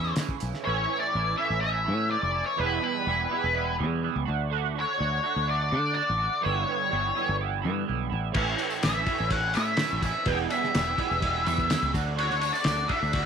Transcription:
Already playing: fingered electric bass E2, clean electric guitar C#3 E3 A3 C#4 E4, lead electric guitar E5
0.05 tambourine
0.16 clean electric guitar C#3 E3 A3 C#4 E4, snare, closed hi-hat, tambourine
0.29 kick, tambourine
0.40 fingered electric bass B1, closed hi-hat, tambourine
0.52 snare, tambourine
0.64 fingered electric bass A1, clean electric guitar A2 E3 A3 C#4 E4, lead electric guitar C#5
0.89 clean electric guitar A3 C#4 E4
1.00 lead electric guitar D5
1.13 fingered electric bass A1, clean electric guitar E3 A3 C#4 E4
1.37 clean electric guitar A2 E3 A3 C#4 E4, lead electric guitar E5
1.50 fingered electric bass A1
1.61 clean electric guitar E3 A3 C#4 E4, lead electric guitar E5
1.85 clean electric guitar A2 E3 A3 C#4 E4, fingered electric bass A2
2.09 clean electric guitar E3 A3 C#4 E4, lead electric guitar D5
2.23 fingered electric bass F1
2.32 clean electric guitar A3 C#4 E4
2.46 lead electric guitar C#5
2.56 fingered electric bass E1, clean electric guitar E2 B2 E3 G3 B3 E4, lead electric guitar B4
2.81 clean electric guitar E3 G3 B3 E4, lead electric guitar B4
3.05 fingered electric bass E1, clean electric guitar E3 G3 B3 E4
3.29 clean electric guitar E2 B2 E3 G3 B3 E4
3.44 fingered electric bass E1
3.54 clean electric guitar E3 G3 B3 E4
3.78 fingered electric bass E2, clean electric guitar E2 B2 E3 G3 B3 E4
4.01 clean electric guitar E3 G3 B3 E4
4.16 fingered electric bass C#2
4.25 fingered electric bass D2, clean electric guitar D3 A3 D4 F#4
4.50 clean electric guitar D3 A3 D4 F#4
4.75 clean electric guitar A3 D4 F#4
4.80 lead electric guitar C#5
4.98 fingered electric bass D2, clean electric guitar D3 A3 D4 F#4
5.23 clean electric guitar D3 A3 D4 F#4
5.36 fingered electric bass D2
5.46 clean electric guitar D3 A3 D4 F#4, lead electric guitar D5
5.71 fingered electric bass D3, clean electric guitar D3 A3 D4 F#4
5.94 clean electric guitar D3 A3 D4 F#4, lead electric guitar D5
6.10 fingered electric bass A1
6.18 clean electric guitar A3 D4 F#4
6.41 clean electric guitar G2 D3 E3 G3 B3 E4, lead electric guitar C#5
6.46 fingered electric bass G1
6.66 clean electric guitar E3 G3 B3 E4
6.89 fingered electric bass G1, clean electric guitar E3 G3 B3 E4
7.15 clean electric guitar G2 D3 E3 G3 B3 E4
7.29 fingered electric bass G1
7.39 clean electric guitar E3 G3 B3 E4
7.62 clean electric guitar G2 D3 E3 G3 B3 E4, fingered electric bass G2
7.86 fingered electric bass B1, clean electric guitar E3 G3 B3 E4
8.10 fingered electric bass A1, clean electric guitar E3 G3 B3 E4
8.32 fingered electric bass A1, clean electric guitar A2 E3 A3 C#4 E4, kick, tambourine, crash
8.47 tambourine
8.57 clean electric guitar A3 C#4 E4, ride, tambourine
8.70 tambourine
8.82 fingered electric bass A1, clean electric guitar E3 A3 C#4 E4, lead electric guitar E5, snare, ride, tambourine
8.95 tambourine
9.06 clean electric guitar A2 E3 A3 C#4 E4, kick, ride, tambourine
9.18 fingered electric bass A1, tambourine
9.30 clean electric guitar E3 A3 C#4 E4, lead electric guitar F#5, kick, ride
9.54 fingered electric bass A2, clean electric guitar A2 E3 A3 C#4 E4, lead electric guitar E5, ride, tambourine
9.67 tambourine
9.77 clean electric guitar E3 A3 C#4, snare, ride, tambourine
9.81 clean electric guitar E4
9.91 fingered electric bass A1, tambourine
10.01 clean electric guitar A3 C#4 E4, lead electric guitar E5, kick, ride, tambourine
10.25 fingered electric bass E1, clean electric guitar E2 B2 E3 G3 B3 E4, lead electric guitar G5, kick, ride, tambourine
10.38 tambourine
10.49 clean electric guitar E3 G3 B3 E4, lead electric guitar E5, ride, tambourine
10.64 snare
10.73 fingered electric bass E1, clean electric guitar E3 G3 B3 E4, snare, ride, tambourine
10.96 clean electric guitar E2 B2 E3 G3 B3 E4, kick, ride, tambourine
11.11 fingered electric bass E1, tambourine
11.20 clean electric guitar E3 G3 B3 E4, kick, ride
11.43 clean electric guitar E2 B2 E3 G3 B3 E4, fingered electric bass E2, ride
11.48 tambourine
11.58 kick
11.68 clean electric guitar E3 G3 B3 E4, snare, ride, tambourine
11.82 fingered electric bass C#2, tambourine
11.93 fingered electric bass D2, clean electric guitar D3 A3 D4 F#4, kick, ride, tambourine
12.16 clean electric guitar D3 A3 D4 F#4, lead electric guitar C#5, ride, tambourine
12.31 snare, tambourine
12.40 clean electric guitar A3 D4 F#4, ride, tambourine
12.54 lead electric guitar D5, tambourine
12.64 fingered electric bass D2, clean electric guitar D3 A3 D4 F#4, snare, ride
12.68 tambourine
12.88 clean electric guitar D3 A3 D4 F#4, lead electric guitar E5, kick, ride
12.92 tambourine
13.03 fingered electric bass D2, tambourine
13.12 clean electric guitar D3 A3 D4 F#4, kick, ride

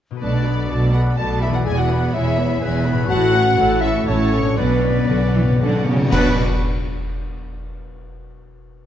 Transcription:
0.11 harp B2 F#4 A4
0.17 harp B4, violin section D5
0.21 double bass section B1, cello section B2, viola section A3 F#4, french horn section D4, violin section A4 A5, clarinet B4, flute D5, trumpet section D5
0.45 viola section B3 A4, violin section B4 B5
0.70 double bass section B1, cello section B2, viola section A3 F#4, violin section A4 A5, clarinet D5
0.93 viola section B3 A4, french horn section F#4, violin section B4 F#5 B5, flute F#5, trumpet section F#5
1.16 double bass section B1, cello section B2, viola section A3 F#4, french horn section A4, violin section A4 A5, clarinet D5, flute A5, trumpet section A5
1.41 viola section B3 A4, french horn section E4, violin section B4 E5 B5, flute E5, trumpet section E5
1.48 harp E2
1.53 harp E4, french horn section F#4, violin section F#5, flute F#5, trumpet section F#5
1.57 harp G#4
1.61 french horn section G#4, harp B4
1.66 double bass section E1, cello section E2, viola section G#3 E4, violin section G#4 G#5, flute G#5, trumpet section G#5
1.77 french horn section F#4, flute F#5, violin section F#5, trumpet section F#5
1.90 viola section B3 G#4, violin section B4 B5
2.13 double bass section E1, cello section E2, viola section G#3 E4, french horn section E4, violin section G#4 E5 G#5, clarinet C#5, flute E5, trumpet section E5
2.38 viola section B3 G#4, violin section B4 B5
2.62 double bass section E1, cello section E2, viola section G#3 E4, violin section G#4 G#5, clarinet B4
2.86 viola section B3 G#4, violin section B4 B5
2.92 harp A2
2.96 harp E4
3.01 harp A4
3.05 french horn section F#4, harp C#6
3.09 double bass section A1, cello section A2, viola section A3 E4, violin section C#5 F#5 A5, flute F#5, trumpet section F#5
3.34 viola section C#4, violin section A4 C#6
3.58 double bass section A1, cello section A2, viola section A3 E4, clarinet A4, violin section C#5 A5
3.81 viola section C#4, french horn section E4, violin section A4 E5 C#6, flute E5, trumpet section E5
4.07 double bass section A1, cello section A2, viola section A3 E4, french horn section C#4, violin section C#5 A5, flute C#5, trumpet section C#5
4.33 viola section C#4, violin section A4 C#6
4.39 harp B2
4.43 harp D4
4.48 harp F#4
4.52 harp D5
4.57 double bass section B1, timpani B2, cello section B2, french horn section B3, viola section C#4 D4, violin section B4 D5 F#5, trumpet section B4, flute B4, clarinet D5
4.66 timpani B2
4.74 timpani B2
4.82 timpani B2, viola section B3 C#4, violin section C#5 D5
4.90 timpani B2
4.98 timpani B2
5.05 double bass section B1, timpani B2, violin section D5 F#5
5.09 timpani B2, cello section D3, viola section C#4 D4
5.28 timpani B2
5.35 timpani B2, cello section E3, viola section B3 C#4, violin section C#5 D5
5.44 timpani B2
5.52 timpani B2
5.60 double bass section B1, timpani B2, cello section D3, viola section C#4 D4, violin section D5 F#5
5.69 timpani B2
5.77 timpani B2
5.85 timpani B2, cello section C#3, viola section B3 C#4, violin section C#5 D5
5.93 timpani B2
6.01 timpani B2
6.07 harp B2 B3 D4
6.12 double bass section B1, timpani B2, cello section B2, french horn section B3, viola section C#4 D4, clarinet D4, harp F#4 C#5, violin section B4 F#5, trumpet section B4, flute B5, concert bass drum, crash
6.17 harp F#5

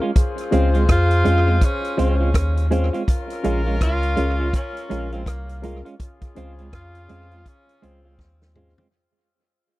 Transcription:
0.02 clean electric guitar G#3 C#4 F4
0.15 horn section F4 G#4 C5, kick, closed hi-hat
0.38 closed hi-hat
0.51 sub bass C#2, clean electric guitar G#3 C4 F4, reed electric piano C#4 F4 G#4 C5, closed hi-hat
0.74 clean electric guitar G#3 C4 F4, closed hi-hat
0.89 sub bass F2, tenor saxophone F4, kick, cross-stick, closed hi-hat
1.11 closed hi-hat
1.24 sub bass F2, clean electric guitar G#3 C4 F4, reed electric piano C#4 F4 G#4 C5, closed hi-hat
1.47 clean electric guitar G#3 C4 F4
1.61 tenor saxophone C#4, kick, closed hi-hat
1.85 closed hi-hat
1.97 sub bass C#2, clean electric guitar G#3 C4 F4, reed electric piano C#4 F4 G#4 C5, tenor saxophone C#4, closed hi-hat
2.20 clean electric guitar G#3 C4 F4
2.34 sub bass D#2, kick, cross-stick, closed hi-hat
2.57 closed hi-hat
2.70 clean electric guitar G#3 C4 F4, reed electric piano C#4 F4 G#4 C5, closed hi-hat
2.93 clean electric guitar G#3 C4 F4, reed electric piano G#4 C5, closed hi-hat
3.07 horn section C#4 F4 A#4, kick, closed hi-hat
3.30 closed hi-hat
3.43 sub bass A#1, clean electric guitar G#3 C#4 F4, reed electric piano C#4 F4 G#4 A#4, closed hi-hat
3.67 clean electric guitar G#3 C#4 F4
3.81 sub bass C#2, tenor saxophone F4, kick, cross-stick, closed hi-hat
4.03 closed hi-hat
4.16 sub bass C#2, clean electric guitar G#3 C#4 F4, reed electric piano C#4 F4 G#4 A#4, closed hi-hat
4.39 clean electric guitar G#3 C#4 F4
4.53 tenor saxophone C#4, kick, closed hi-hat
4.77 closed hi-hat
4.89 sub bass A#1, clean electric guitar G#3 C#4 F4, reed electric piano C#4 F4 G#4 A#4, closed hi-hat
5.12 clean electric guitar G#3 C#4 F4, tenor saxophone C4, closed hi-hat
5.26 sub bass C2, tenor saxophone A#3, kick, cross-stick, closed hi-hat
5.49 closed hi-hat
5.62 clean electric guitar G#3 C#4 F4, reed electric piano C#4 F4 G#4 A#4, closed hi-hat
5.85 clean electric guitar G#3 C#4 F4, closed hi-hat
6.00 horn section C#3 F4 G#4, kick, closed hi-hat
6.21 kick, closed hi-hat
6.35 sub bass C#2, clean electric guitar G#3 C4 F4, reed electric piano C#4 F4 G#4 C5, closed hi-hat
6.59 clean electric guitar G#3 C4 F4, closed hi-hat
6.73 sub bass F2, tenor saxophone F4, kick, cross-stick, closed hi-hat
6.95 closed hi-hat
7.08 sub bass F2, clean electric guitar G#3 C4 F4, reed electric piano C#4 F4 G#4 C5, closed hi-hat
7.31 clean electric guitar G#3 C4 F4, closed hi-hat
7.46 tenor saxophone C#4, kick, closed hi-hat
7.69 closed hi-hat
7.81 sub bass C#2, clean electric guitar G#3 C4 F4, reed electric piano C#4 F4 G#4 C5, closed hi-hat
7.86 tenor saxophone C4
8.05 clean electric guitar G#3 C4 F4
8.19 sub bass D#2, kick, snare
8.42 snare
8.55 clean electric guitar G#3 C4 F4, reed electric piano C#4 F4 G#4 C5, mid tom
8.78 clean electric guitar G#3 C4 F4, reed electric piano G#4 C5, floor tom

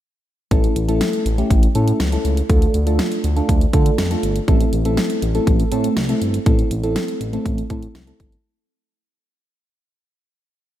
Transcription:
0.51 analog synth bass A1, fm electric piano A3 C#4 E4 A4, kick, closed hi-hat
0.64 closed hi-hat
0.76 analog synth bass A1, closed hi-hat
0.88 fm electric piano A3 C#4 E4 A4, closed hi-hat
1.01 snare, closed hi-hat
1.13 closed hi-hat
1.26 analog synth bass A1, closed hi-hat
1.38 fm electric piano A3 C#4 E4 G4, closed hi-hat
1.50 analog synth bass A1, kick, closed hi-hat
1.63 closed hi-hat
1.75 analog synth bass A2, fm electric piano A3 C#4 E4 A4, closed hi-hat
1.88 closed hi-hat
2.00 analog synth bass C#2, snare, closed hi-hat
2.12 fm electric piano A3 C#4 E4 A4, closed hi-hat
2.25 analog synth bass C#2, closed hi-hat
2.37 closed hi-hat
2.50 analog synth bass D2, fm electric piano A3 D4 F4 A4, kick, closed hi-hat
2.62 closed hi-hat
2.74 analog synth bass D2, closed hi-hat
2.87 fm electric piano A3 D4 F4 A4, closed hi-hat
2.99 snare, closed hi-hat
3.12 closed hi-hat
3.24 analog synth bass D2, closed hi-hat
3.36 fm electric piano A3 D4 F4 A4, closed hi-hat
3.49 analog synth bass D2, kick, closed hi-hat
3.61 closed hi-hat
3.73 analog synth bass D3, fm electric piano A3 D4 F4 A4, kick, closed hi-hat
3.86 closed hi-hat
3.98 analog synth bass F2, snare, closed hi-hat
4.11 fm electric piano A3 D4 F4 A4, closed hi-hat
4.23 analog synth bass G1, closed hi-hat
4.36 closed hi-hat
4.48 analog synth bass A1, fm electric piano A3 C4 E4 A4, kick, closed hi-hat
4.61 closed hi-hat
4.73 analog synth bass A1, closed hi-hat
4.85 fm electric piano A3 C4 E4 A4, closed hi-hat
4.97 snare, closed hi-hat
5.10 closed hi-hat
5.22 analog synth bass A1, closed hi-hat
5.35 fm electric piano A3 C4 E4 A4, closed hi-hat
5.47 analog synth bass A1, kick, closed hi-hat
5.60 closed hi-hat
5.72 analog synth bass A2, fm electric piano A3 C4 E4 A4, closed hi-hat
5.84 closed hi-hat
5.97 analog synth bass C2, snare, closed hi-hat
6.09 fm electric piano A3 C4 E4 A4, closed hi-hat
6.22 analog synth bass G1, closed hi-hat
6.34 closed hi-hat
6.46 analog synth bass A1, fm electric piano A3 C4 E4 A4, kick, closed hi-hat
6.59 closed hi-hat
6.71 analog synth bass A1, closed hi-hat
6.83 fm electric piano A3 C4 E4 A4, closed hi-hat
6.96 snare, closed hi-hat
7.08 closed hi-hat
7.21 analog synth bass A1, closed hi-hat
7.33 fm electric piano A3 C4 E4 A4, closed hi-hat
7.46 analog synth bass A1, kick, closed hi-hat
7.58 closed hi-hat
7.70 analog synth bass A2, fm electric piano A3 C4 E4 A4, kick, closed hi-hat
7.83 closed hi-hat
7.95 analog synth bass C2, snare, closed hi-hat
8.07 fm electric piano A3 C4 E4 A4, closed hi-hat
8.20 analog synth bass G1, kick, closed hi-hat
8.32 closed hi-hat

